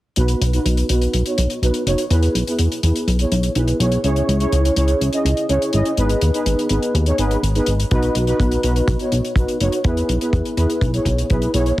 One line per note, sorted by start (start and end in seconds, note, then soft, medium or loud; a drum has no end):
0.16 0.35 B1 medium
0.16 0.50 B3 loud
0.16 0.50 D#4 medium
0.16 0.50 F#4 medium
0.16 0.50 B4 loud
0.16 closed hi-hat medium
0.28 closed hi-hat medium
0.41 0.59 B1 medium
0.41 closed hi-hat loud
0.53 0.87 B3 medium
0.53 0.87 D#4 medium
0.53 0.87 F#4 medium
0.53 0.87 B4 medium
0.53 closed hi-hat medium
0.65 0.83 B1 medium
0.65 closed hi-hat medium
0.77 closed hi-hat medium
0.89 1.07 B1 medium
0.89 1.23 B3 medium
0.89 1.23 D#4 medium
0.89 1.23 F#4 medium
0.89 1.23 B4 medium
0.89 closed hi-hat medium
1.02 closed hi-hat medium
1.14 1.23 B1 medium
1.14 closed hi-hat medium
1.26 1.59 B3 medium
1.26 1.59 D#4 medium
1.26 1.59 F#4 medium
1.26 1.59 C#5 medium
1.26 closed hi-hat medium
1.38 1.47 B1 medium
1.38 closed hi-hat loud
1.50 closed hi-hat soft
1.62 1.71 B1 medium
1.62 1.83 B3 medium
1.62 1.83 D#4 medium
1.62 1.83 F#4 medium
1.62 1.83 B4 medium
1.62 closed hi-hat medium
1.74 closed hi-hat medium
1.86 1.95 F#1 medium
1.86 2.05 B3 medium
1.86 2.05 D#4 medium
1.86 2.05 F#4 medium
1.86 2.05 C#5 loud
1.86 closed hi-hat loud
1.98 closed hi-hat medium
2.10 2.28 E2 medium
2.10 2.44 B3 medium
2.10 2.44 E4 medium
2.10 2.44 G#4 medium
2.10 2.44 B4 loud
2.10 closed hi-hat medium
2.23 closed hi-hat medium
2.35 2.44 B1 medium
2.35 closed hi-hat medium
2.47 2.80 B3 medium
2.47 2.80 E4 medium
2.47 2.80 G#4 medium
2.47 2.80 B4 medium
2.47 closed hi-hat medium
2.59 2.68 E2 medium
2.59 closed hi-hat medium
2.72 closed hi-hat medium
2.83 2.92 E2 medium
2.83 3.16 B3 medium
2.83 3.16 E4 medium
2.83 3.16 G#4 medium
2.83 3.16 B4 medium
2.83 closed hi-hat loud
2.96 closed hi-hat medium
3.07 3.25 B1 medium
3.07 closed hi-hat medium
3.19 3.53 B3 medium
3.19 3.53 E4 medium
3.19 3.53 G#4 medium
3.19 3.53 C#5 medium
3.19 closed hi-hat medium
3.32 3.49 B1 medium
3.32 closed hi-hat medium
3.43 closed hi-hat medium
3.55 3.73 B1 loud
3.55 3.77 B3 medium
3.55 3.77 E4 medium
3.55 3.77 G#4 medium
3.55 3.77 B4 loud
3.55 closed hi-hat medium
3.68 closed hi-hat medium
3.80 3.98 B1 loud
3.80 3.98 B3 medium
3.80 3.98 E4 medium
3.80 3.98 G#4 medium
3.80 3.98 C#5 loud
3.80 closed hi-hat medium
3.92 closed hi-hat medium
4.04 4.22 C#2 medium
4.04 4.37 C#4 medium
4.04 4.37 E4 medium
4.04 4.37 G#4 medium
4.04 4.37 C#5 loud
4.04 closed hi-hat medium
4.16 closed hi-hat soft
4.28 4.46 C#2 medium
4.28 closed hi-hat medium
4.40 4.74 C#4 medium
4.40 4.74 E4 medium
4.40 4.74 G#4 medium
4.40 4.74 C#5 loud
4.40 closed hi-hat medium
4.52 4.70 C#2 medium
4.52 closed hi-hat medium
4.65 closed hi-hat medium
4.76 4.94 C#2 medium
4.76 5.10 C#4 medium
4.76 5.10 E4 medium
4.76 5.10 G#4 medium
4.76 5.10 C#5 medium
4.76 closed hi-hat loud
4.88 closed hi-hat medium
5.01 5.10 C#2 medium
5.01 closed hi-hat medium
5.13 5.46 C#4 medium
5.13 5.46 E4 medium
5.13 5.46 G#4 medium
5.13 5.46 D#5 medium
5.13 closed hi-hat medium
5.25 5.34 C#2 medium
5.25 closed hi-hat medium
5.37 closed hi-hat medium
5.49 5.58 C#2 medium
5.49 5.70 C#4 medium
5.49 5.70 E4 medium
5.49 5.70 G#4 medium
5.49 5.70 C#5 medium
5.49 closed hi-hat medium
5.62 closed hi-hat medium
5.73 5.82 G#1 medium
5.73 5.92 C#4 medium
5.73 5.92 E4 medium
5.73 5.92 G#4 medium
5.73 5.92 D#5 loud
5.73 closed hi-hat medium
5.85 closed hi-hat soft
5.97 6.15 G#1 loud
5.97 6.31 B3 medium
5.97 6.31 D#4 medium
5.97 6.31 G#4 medium
5.97 6.31 B4 loud
5.97 closed hi-hat medium
6.09 closed hi-hat medium
6.21 6.31 D#2 medium
6.21 closed hi-hat loud
6.34 6.67 B3 medium
6.34 6.67 D#4 medium
6.34 6.67 G#4 medium
6.34 6.67 B4 medium
6.34 closed hi-hat medium
6.46 6.55 G#1 medium
6.46 closed hi-hat medium
6.59 closed hi-hat medium
6.69 6.79 G#1 medium
6.69 7.03 B3 medium
6.69 7.03 D#4 medium
6.69 7.03 G#4 medium
6.69 7.03 B4 medium
6.69 closed hi-hat medium
6.83 closed hi-hat medium
6.94 7.12 D#2 medium
6.94 closed hi-hat medium
7.06 7.16 B3 medium
7.06 7.16 D#4 medium
7.06 7.16 G#4 medium
7.06 7.16 C#5 medium
7.06 closed hi-hat medium
7.18 7.36 G#1 medium
7.18 7.37 B3 medium
7.18 7.37 D#4 medium
7.18 7.37 G#4 medium
7.18 7.37 B4 loud
7.18 closed hi-hat medium
7.31 closed hi-hat medium
7.43 7.61 G#1 loud
7.43 closed hi-hat medium
7.55 7.73 B3 medium
7.55 7.73 D#4 medium
7.55 7.73 G#4 medium
7.55 7.73 B4 medium
7.55 closed hi-hat soft
7.66 7.85 G#1 medium
7.66 closed hi-hat medium
7.80 closed hi-hat medium
7.91 8.09 B1 medium
7.91 8.24 B3 medium
7.91 8.24 D#4 medium
7.91 8.25 F#4 medium
7.91 8.24 B4 loud
7.91 kick loud
7.91 closed hi-hat medium
8.02 closed hi-hat medium
8.15 8.33 B1 medium
8.15 closed hi-hat medium
8.27 8.61 B3 medium
8.27 8.61 D#4 medium
8.27 8.61 F#4 medium
8.27 8.61 B4 loud
8.27 closed hi-hat soft
8.40 8.57 B1 medium
8.40 kick loud
8.40 closed hi-hat medium
8.51 closed hi-hat medium
8.63 8.82 B1 medium
8.63 8.97 B3 medium
8.63 8.97 D#4 medium
8.63 8.97 F#4 medium
8.63 8.97 B4 medium
8.63 closed hi-hat medium
8.76 closed hi-hat medium
8.88 8.97 B1 medium
8.88 kick loud
8.88 closed hi-hat medium
8.99 9.33 B3 medium
8.99 9.33 D#4 medium
8.99 9.33 F#4 medium
8.99 9.33 C#5 medium
8.99 closed hi-hat soft
9.12 9.21 B1 medium
9.12 closed hi-hat medium
9.25 closed hi-hat medium
9.36 9.45 B1 medium
9.36 9.58 B3 medium
9.36 9.58 D#4 medium
9.36 9.58 F#4 medium
9.36 9.58 B4 medium
9.36 kick loud
9.36 closed hi-hat medium
9.48 closed hi-hat medium
9.60 9.69 F#1 medium
9.60 9.79 B3 loud
9.60 9.79 D#4 medium
9.60 9.79 F#4 medium
9.60 9.79 C#5 loud
9.60 closed hi-hat medium
9.72 closed hi-hat medium
9.84 10.02 E2 medium
9.84 10.18 B3 medium
9.84 10.18 E4 medium
9.84 10.18 G#4 medium
9.84 10.18 B4 loud
9.84 kick loud
9.84 closed hi-hat medium
9.97 closed hi-hat medium
10.09 10.18 B1 medium
10.09 closed hi-hat medium
10.21 10.54 B3 medium
10.21 10.54 E4 medium
10.21 10.54 G#4 medium
10.21 10.54 B4 medium
10.21 closed hi-hat medium
10.33 10.42 E2 medium
10.33 kick loud
10.33 closed hi-hat medium
10.45 closed hi-hat medium
10.57 10.66 E2 medium
10.57 10.91 B3 medium
10.57 10.91 E4 medium
10.57 10.91 G#4 medium
10.57 10.91 B4 loud
10.57 closed hi-hat medium
10.70 closed hi-hat soft
10.81 10.99 B1 medium
10.81 kick loud
10.81 closed hi-hat medium
10.94 11.27 B3 medium
10.94 11.27 E4 medium
10.94 11.27 G#4 medium
10.94 11.27 C#5 medium
10.94 closed hi-hat medium
11.05 11.23 B1 medium
11.05 kick medium
11.05 closed hi-hat medium
11.18 closed hi-hat medium
11.30 11.48 B1 loud
11.30 11.51 B3 medium
11.30 11.51 E4 medium
11.30 11.51 G#4 medium
11.30 11.51 B4 loud
11.30 kick loud
11.30 closed hi-hat medium
11.42 closed hi-hat medium
11.54 11.72 B1 loud
11.54 11.72 B3 medium
11.54 11.72 E4 medium
11.54 11.72 G#4 medium
11.54 11.72 C#5 loud
11.54 closed hi-hat loud
11.66 closed hi-hat soft